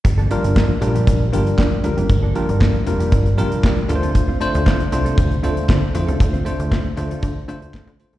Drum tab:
HH |xxxx--xxx-xx--xx|x-xx--xxxxxx--xx|x-xx-xxxxxxx--xx|xxxx--xxx-xx-xxx|
CP |----x-------x---|----x-------x---|----x-------x---|----x-------x---|
SD |----o-------o---|----o-------o---|----o-------o---|----o-------o---|
BD |o---o---o---o---|o---o---o---o---|o---o---o---o---|o---o---o---o---|